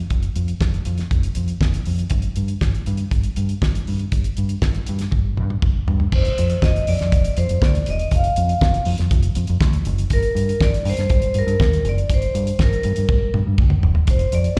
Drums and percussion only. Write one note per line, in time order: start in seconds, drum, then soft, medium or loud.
0.10 kick medium
0.10 closed hi-hat medium
0.23 closed hi-hat soft
0.36 closed hi-hat medium
0.48 closed hi-hat soft
0.61 kick loud
0.61 snare loud
0.74 closed hi-hat soft
0.85 closed hi-hat medium
0.98 snare soft
0.98 closed hi-hat soft
1.11 kick loud
1.11 closed hi-hat medium
1.23 closed hi-hat soft
1.35 closed hi-hat medium
1.48 closed hi-hat soft
1.61 kick loud
1.61 snare loud
1.74 closed hi-hat soft
1.85 open hi-hat medium
1.99 closed hi-hat soft
2.10 kick medium
2.10 closed hi-hat medium
2.22 closed hi-hat soft
2.36 closed hi-hat medium
2.48 closed hi-hat soft
2.61 kick loud
2.61 snare loud
2.74 closed hi-hat soft
2.86 closed hi-hat medium
2.97 closed hi-hat medium
3.11 kick loud
3.11 closed hi-hat medium
3.23 closed hi-hat soft
3.36 closed hi-hat medium
3.49 closed hi-hat soft
3.62 kick loud
3.62 snare loud
3.75 closed hi-hat soft
3.87 open hi-hat medium
3.99 closed hi-hat soft
4.12 kick medium
4.12 closed hi-hat medium
4.24 closed hi-hat soft
4.37 closed hi-hat medium
4.49 closed hi-hat soft
4.62 kick loud
4.62 snare loud
4.75 closed hi-hat soft
4.87 closed hi-hat medium
4.99 snare soft
4.99 closed hi-hat medium
5.11 kick loud
5.11 high tom medium
5.37 mid tom medium
5.50 mid tom medium
5.62 kick loud
5.62 mid tom medium
5.88 floor tom loud
6.00 floor tom medium
6.12 kick loud
6.12 crash loud
6.25 closed hi-hat soft
6.38 closed hi-hat medium
6.50 closed hi-hat soft
6.62 kick loud
6.62 snare loud
6.76 closed hi-hat soft
6.87 open hi-hat medium
6.99 snare soft
6.99 closed hi-hat medium
7.12 kick loud
7.12 closed hi-hat medium
7.24 closed hi-hat medium
7.37 closed hi-hat medium
7.49 closed hi-hat medium
7.62 kick loud
7.62 snare loud
7.75 closed hi-hat medium
7.86 closed hi-hat medium
7.99 closed hi-hat soft
8.11 kick loud
8.11 closed hi-hat medium
8.24 closed hi-hat soft
8.36 closed hi-hat medium
8.49 closed hi-hat soft
8.61 kick loud
8.61 snare loud
8.74 closed hi-hat soft
8.85 open hi-hat medium
8.98 snare soft
8.98 closed hi-hat medium
9.11 kick loud
9.11 closed hi-hat medium
9.23 closed hi-hat medium
9.35 closed hi-hat medium
9.47 closed hi-hat medium
9.61 kick loud
9.61 snare loud
9.73 closed hi-hat soft
9.85 closed hi-hat medium
9.98 closed hi-hat soft
10.10 kick medium
10.10 closed hi-hat medium
10.23 closed hi-hat soft
10.37 closed hi-hat medium
10.49 closed hi-hat soft
10.61 kick loud
10.61 snare loud
10.74 closed hi-hat soft
10.85 open hi-hat medium
10.97 snare soft
10.97 closed hi-hat medium
11.10 kick loud
11.10 closed hi-hat medium
11.22 closed hi-hat medium
11.34 closed hi-hat medium
11.48 closed hi-hat soft
11.60 kick loud
11.60 snare loud
11.73 closed hi-hat medium
11.85 closed hi-hat medium
11.98 closed hi-hat soft
12.10 kick medium
12.10 closed hi-hat medium
12.22 closed hi-hat soft
12.35 closed hi-hat medium
12.47 closed hi-hat medium
12.59 kick loud
12.59 snare loud
12.73 closed hi-hat soft
12.83 closed hi-hat medium
12.96 closed hi-hat medium
13.09 kick loud
13.09 high tom medium
13.34 mid tom medium
13.58 kick loud
13.58 mid tom loud
13.70 mid tom loud
13.83 floor tom loud
13.95 floor tom medium
14.07 kick loud
14.07 closed hi-hat loud
14.19 closed hi-hat soft
14.32 closed hi-hat medium
14.44 closed hi-hat soft